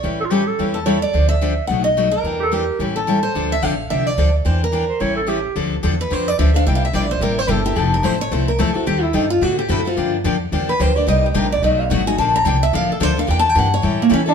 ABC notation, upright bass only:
X:1
M:4/4
L:1/8
Q:"Swing" 1/4=217
K:Dm
V:1 name="Upright bass" clef=bass
A,,,4 E,,4 | D,,4 =B,,,4 | E,,4 A,,,4 | D,,2 B,,,2 C,,2 D,,2 |
E,,4 A,,,4 | D,,2 E,,2 F,,2 D,,2 | C,,2 B,,,2 A,,,2 G,,,2 | F,,,2 A,,,2 C,,2 E,, z |
_E,,2 G,,2 A,,2 ^F,,2 | G,,2 F,,2 E,,2 D,,2 | C,,2 B,,,2 =B,,,2 ^G,,,2 | B,,,2 C,,2 A,,, z D,,2 |
E,,2 G,,2 A,,2 E,2 |]